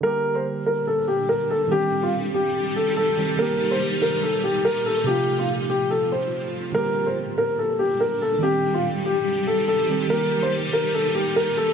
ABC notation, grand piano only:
X:1
M:4/4
L:1/16
Q:1/4=143
K:Gm
V:1 name="Grand piano"
B3 c z2 B2 A2 G2 B2 A2 | G3 F z2 G4 A2 A4 | B3 c z2 B2 A2 G2 B2 A2 | G3 F z2 G2 A2 c6 |
B3 c z2 B2 A2 G2 B2 A2 | G3 F z2 G4 A2 A4 | B3 c z2 B2 A2 G2 B2 A2 |]